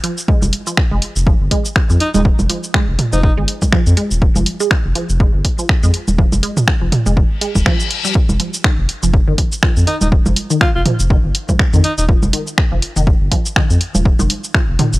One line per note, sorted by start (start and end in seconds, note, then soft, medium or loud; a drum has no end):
0.04 0.11 F3 medium
0.04 open hi-hat loud
0.18 shaker soft
0.28 0.35 G#3 loud
0.28 kick loud
0.42 0.50 F1 loud
0.42 high conga medium
0.42 shaker soft
0.53 open hi-hat loud
0.67 0.72 F3 medium
0.67 shaker medium
0.77 finger snap medium
0.77 kick loud
0.91 0.99 F1 medium
0.91 0.97 G#3 loud
1.02 open hi-hat loud
1.16 1.32 F1 medium
1.16 shaker medium
1.27 1.34 F3 medium
1.27 kick loud
1.41 1.48 G1 medium
1.51 1.58 G#3 loud
1.51 kick medium
1.51 open hi-hat loud
1.65 shaker medium
1.76 finger snap medium
1.76 kick loud
1.90 1.97 F2 medium
1.90 1.95 F3 medium
1.90 shaker soft
2.00 2.09 D#4 medium
2.00 open hi-hat loud
2.14 2.31 D#1 loud
2.14 2.20 G#3 loud
2.14 2.21 D#4 medium
2.14 high conga medium
2.14 shaker soft
2.25 kick loud
2.39 2.46 F1 loud
2.39 high conga medium
2.39 shaker soft
2.50 2.57 F3 medium
2.50 open hi-hat medium
2.64 shaker medium
2.74 2.81 G#3 loud
2.74 finger snap loud
2.74 kick loud
2.88 2.96 F1 medium
2.99 mid tom medium
2.99 open hi-hat medium
3.13 3.29 F1 medium
3.13 3.18 F3 medium
3.13 3.20 D#4 medium
3.13 shaker medium
3.23 3.32 D#4 medium
3.23 kick loud
3.37 3.45 G1 loud
3.37 3.43 G#3 loud
3.48 open hi-hat medium
3.62 kick medium
3.62 high conga medium
3.62 shaker medium
3.72 3.80 F3 medium
3.72 finger snap medium
3.72 kick loud
3.87 3.94 F2 medium
3.87 shaker soft
3.97 4.04 G#3 loud
3.97 open hi-hat medium
4.11 4.27 D#1 medium
4.11 shaker medium
4.22 kick loud
4.36 4.43 F1 loud
4.36 4.41 F3 medium
4.36 high conga medium
4.36 shaker soft
4.46 open hi-hat medium
4.60 4.66 G#3 loud
4.60 shaker medium
4.71 finger snap loud
4.71 kick loud
4.85 4.92 F1 loud
4.95 5.02 F3 medium
4.95 open hi-hat medium
5.09 5.26 F1 medium
5.09 shaker medium
5.20 5.27 G#3 loud
5.20 kick loud
5.34 5.41 G1 medium
5.45 kick medium
5.45 open hi-hat medium
5.59 5.64 F3 medium
5.59 shaker medium
5.69 finger snap medium
5.69 kick loud
5.83 5.91 F2 medium
5.83 5.89 G#3 loud
5.83 shaker soft
5.94 open hi-hat medium
6.08 6.24 D#1 loud
6.08 high conga soft
6.08 shaker medium
6.18 6.25 F3 medium
6.18 kick loud
6.32 6.40 F1 loud
6.32 high conga medium
6.32 shaker soft
6.43 6.50 G#3 loud
6.43 open hi-hat medium
6.57 mid tom medium
6.57 shaker medium
6.68 finger snap loud
6.68 kick loud
6.82 6.89 F1 medium
6.82 6.87 F3 medium
6.92 mid tom loud
6.92 open hi-hat loud
7.06 7.22 F1 loud
7.06 7.12 G#3 loud
7.06 shaker medium
7.17 kick loud
7.17 reverse cymbal medium
7.41 7.48 G#3 loud
7.41 open hi-hat medium
7.55 7.63 D#1 loud
7.55 kick medium
7.55 high conga medium
7.55 shaker medium
7.66 7.76 F3 loud
7.66 finger snap medium
7.66 kick loud
7.80 shaker soft
7.91 open hi-hat medium
8.05 8.13 G3 medium
8.05 shaker medium
8.15 kick loud
8.29 8.37 F1 loud
8.29 high conga medium
8.29 shaker soft
8.40 8.47 F3 medium
8.40 open hi-hat medium
8.54 shaker medium
8.64 8.71 D#3 loud
8.64 finger snap loud
8.64 kick loud
8.78 8.86 F1 medium
8.89 open hi-hat medium
9.03 9.19 F1 loud
9.03 9.08 F3 medium
9.03 shaker medium
9.14 kick loud
9.28 9.35 G1 medium
9.28 9.33 D#3 loud
9.38 kick medium
9.38 open hi-hat loud
9.52 shaker medium
9.63 9.70 F3 medium
9.63 finger snap loud
9.63 kick loud
9.77 9.84 F2 medium
9.77 shaker soft
9.87 9.94 D#3 loud
9.87 9.96 D#4 medium
9.87 open hi-hat medium
10.01 10.17 D#1 medium
10.01 10.08 D#4 medium
10.01 high conga medium
10.01 shaker medium
10.12 kick loud
10.26 10.33 F1 loud
10.26 10.31 F3 medium
10.26 high conga medium
10.26 shaker soft
10.36 open hi-hat loud
10.50 10.56 D#3 loud
10.50 shaker medium
10.61 10.70 F4 medium
10.61 finger snap loud
10.61 kick loud
10.75 10.82 F1 medium
10.75 10.82 F4 medium
10.86 10.93 F3 medium
10.86 mid tom loud
10.86 open hi-hat loud
11.00 11.16 F1 medium
11.00 shaker medium
11.10 11.17 D#3 loud
11.10 kick loud
11.24 11.32 G1 loud
11.35 open hi-hat loud
11.49 11.54 F3 medium
11.49 kick medium
11.49 high conga medium
11.49 shaker medium
11.59 finger snap loud
11.59 kick loud
11.73 11.81 F2 medium
11.73 11.79 D#3 loud
11.73 shaker soft
11.84 11.93 D#4 medium
11.84 open hi-hat loud
11.98 12.14 D#1 loud
11.98 12.05 D#4 medium
11.98 shaker medium
12.09 12.16 F3 medium
12.09 kick loud
12.23 12.30 F1 loud
12.23 high conga medium
12.23 shaker soft
12.33 12.40 D#3 loud
12.33 open hi-hat loud
12.47 shaker medium
12.58 finger snap loud
12.58 kick loud
12.72 12.79 F1 loud
12.72 12.77 F3 medium
12.82 open hi-hat loud
12.96 13.13 F1 medium
12.96 13.02 D#3 loud
12.96 shaker medium
13.07 kick loud
13.21 13.28 G1 loud
13.32 13.39 F3 medium
13.32 kick medium
13.32 open hi-hat loud
13.46 shaker medium
13.56 13.63 D#3 loud
13.56 finger snap loud
13.56 kick loud
13.70 13.78 F2 medium
13.70 shaker soft
13.81 open hi-hat loud
13.95 14.11 D#1 loud
13.95 14.00 F3 medium
13.95 high conga medium
13.95 shaker medium
14.05 kick loud
14.19 14.27 F1 loud
14.19 14.25 D#3 loud
14.19 high conga medium
14.19 shaker soft
14.30 open hi-hat loud
14.44 shaker medium
14.54 14.61 F3 medium
14.54 finger snap medium
14.54 kick loud
14.69 14.76 F1 loud
14.79 14.86 D#3 loud
14.79 mid tom medium
14.79 open hi-hat loud
14.93 14.99 F1 medium
14.93 shaker medium